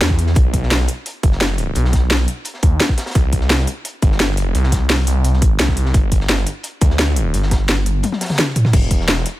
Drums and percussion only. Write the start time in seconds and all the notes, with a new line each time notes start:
0.01 snare, closed hi-hat
0.10 kick, snare
0.19 closed hi-hat
0.26 snare
0.35 kick, closed hi-hat
0.54 kick, closed hi-hat
0.63 snare
0.71 snare, closed hi-hat
0.80 closed hi-hat
0.88 closed hi-hat
1.06 closed hi-hat
1.23 kick, closed hi-hat
1.32 snare
1.41 snare, closed hi-hat
1.58 closed hi-hat
1.75 closed hi-hat
1.84 snare
1.93 kick, snare, closed hi-hat
2.10 snare, closed hi-hat, open hi-hat
2.28 closed hi-hat
2.45 closed hi-hat
2.54 snare
2.63 kick, closed hi-hat
2.80 snare, closed hi-hat
2.89 kick, snare
2.98 snare, closed hi-hat
3.06 snare, closed hi-hat
3.10 snare, closed hi-hat
3.15 kick, closed hi-hat
3.32 kick, closed hi-hat
3.41 snare
3.49 snare, closed hi-hat
3.59 closed hi-hat
3.67 closed hi-hat
3.85 closed hi-hat
4.02 kick, closed hi-hat
4.11 snare
4.20 snare, closed hi-hat
4.37 closed hi-hat
4.55 closed hi-hat
4.63 snare
4.72 kick, snare, closed hi-hat
4.90 snare, closed hi-hat, open hi-hat
5.07 closed hi-hat
5.24 closed hi-hat
5.33 snare
5.42 kick, closed hi-hat
5.59 snare, closed hi-hat
5.68 kick, snare
5.77 closed hi-hat
5.85 snare
5.94 kick, closed hi-hat
6.12 kick, closed hi-hat
6.20 snare
6.28 snare, closed hi-hat
6.38 closed hi-hat
6.47 closed hi-hat
6.63 closed hi-hat
6.81 kick, closed hi-hat
6.90 snare
6.99 snare, closed hi-hat
7.16 closed hi-hat
7.34 closed hi-hat
7.42 snare
7.51 kick, snare, closed hi-hat
7.68 snare, closed hi-hat
7.86 closed hi-hat
8.03 closed hi-hat, high tom
8.12 snare, high tom
8.21 snare, closed hi-hat
8.25 snare, closed hi-hat
8.29 snare, closed hi-hat, mid tom
8.35 snare, closed hi-hat
8.39 snare, closed hi-hat, mid tom
8.47 snare
8.56 closed hi-hat, mid tom
8.65 snare, mid tom
8.73 kick, closed hi-hat, crash
8.91 kick, closed hi-hat
9.00 snare
9.08 snare, closed hi-hat
9.17 closed hi-hat
9.26 closed hi-hat